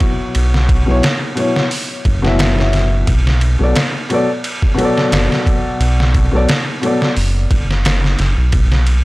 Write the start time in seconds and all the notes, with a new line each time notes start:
Already playing: B2 F#3 E4 C#5
0.00 kick, ride
0.35 B1, ride
0.54 snare
0.69 kick, ride
0.86 B1 B2 F#3 E4
0.91 C#5
1.03 snare, ride
1.35 B2 F#3 E4, ride
1.40 C#5
1.56 snare
1.71 open hi-hat
2.05 F#1, kick, ride
2.22 B2 F#3 E4, snare
2.27 E5
2.39 snare, ride
2.56 B2 F#3 E4, snare
2.61 E5
2.73 snare, ride
3.07 B1, kick, ride
3.27 snare
3.41 ride
3.59 B1 B2 F#3 A4
3.64 D5
3.76 snare, ride
4.10 B2 F#3 A4, ride
4.14 D5
4.44 ride
4.62 kick
4.74 B2 F#3
4.79 A4, ride
4.85 D5
4.98 snare
5.12 F#1, snare, ride
5.32 snare
5.46 kick, ride
5.80 B1, ride
6.00 snare
6.14 kick, ride
6.31 B1 B2 F#3 A4
6.36 D5
6.49 snare, ride
6.81 B2 F#3 A4, ride
6.86 D5
7.02 snare
7.17 F#1, open hi-hat
7.51 F#1, kick, ride
7.71 snare
7.85 F#1, snare, ride
8.04 snare
8.19 F#1, snare, ride
8.37 B1
8.52 B1, kick, ride
8.72 snare
8.87 ride